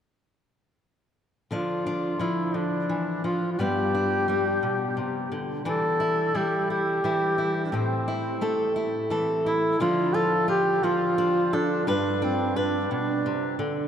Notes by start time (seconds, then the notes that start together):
1.51 D3 F3 D4 F4
1.87 D4
2.19 F3 D4 E4
2.54 D3 D4
2.89 E3
3.24 F3 F4
3.52 F4
3.59 G2 G3 B3 D4 G4
3.95 D4
4.28 G3 D4
4.63 B2
4.97 C3
5.32 D3
5.65 E3 D4 A4
6.00 E4
6.34 G3 E4 G4
6.70 E4 G4
7.04 E3 E4
7.38 E4
7.65 D4
7.72 A2 C4
8.08 E4
8.41 A3 A4
8.76 E4
9.10 E3 A4
9.46 E4
9.80 D3 F3 D4 F4
10.14 F4 A4
10.48 F4 G4
10.83 F3 D4 F4
11.18 D4
11.53 D4 A4
11.87 G2 D4 B4
12.22 C4 D4
12.56 D4 B4
12.91 B2 D4
13.26 C3
13.59 D3